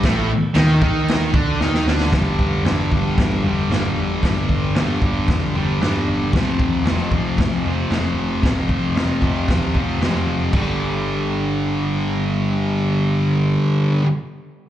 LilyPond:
<<
  \new Staff \with { instrumentName = "Distorted electric guitar" } { \clef bass \time 4/4 \key f \mixolydian \tempo 4 = 114 <a, a>8 r8 <ees ees'>8 <ees ees'>4 <d d'>8 <ees ees'>8 <d d'>8 | <g, d g>4 <g, d g>8 <d g>4 <d g>8 <g, d g>4 | <g, d g>4 <g, d g>8 <d g>4 <d g>8 <g, d g>4 | <f, c f>4 <f, c f>8 <c f>4 <c f>8 <f, c f>4 |
<f, c f>4 <f, c f>8 <c f>4 <c f>8 <f, c f>4 | <g, d g>1~ | <g, d g>1 | }
  \new Staff \with { instrumentName = "Picked electric bass" } { \clef bass \time 4/4 \key f \mixolydian a,,8 r8 ees,8 ees,4 d,8 ees,8 d,8 | g,,8 f,8 g,,8 g,,8 g,,8 g,,8 g,,8 g,,8 | g,,8 g,,8 g,,8 g,,8 f,8 g,,8 g,,8 g,,8 | f,,8 ees,8 f,,8 f,,8 f,,8 f,,8 f,,8 f,,8 |
f,,8 f,,8 f,,8 f,,8 ees,8 f,,8 f,,8 f,,8 | g,,1~ | g,,1 | }
  \new DrumStaff \with { instrumentName = "Drums" } \drummode { \time 4/4 <cymc bd sn>4 <cymc sn>8 bd8 <cymc sn>8 bd8 sn16 sn16 sn16 sn16 | <bd sn tomfh>8 <bd tomfh>8 <sn tomfh>8 <bd tomfh>8 <bd sn tomfh>8 tomfh8 <sn tomfh>8 tomfh8 | <bd sn tomfh>8 <bd tomfh>8 <sn tomfh>8 <bd tomfh>8 <bd sn tomfh>8 tomfh8 <sn tomfh>8 tomfh8 | <bd sn tomfh>8 <bd tomfh>8 <sn tomfh>8 <bd tomfh>8 <bd sn tomfh>8 tomfh8 <sn tomfh>8 tomfh8 |
<bd sn tomfh>8 <bd tomfh>8 <sn tomfh>8 <bd tomfh>8 <bd sn tomfh>8 <bd tomfh>8 <sn tomfh>8 tomfh8 | <cymc bd>4 r4 r4 r4 | r4 r4 r4 r4 | }
>>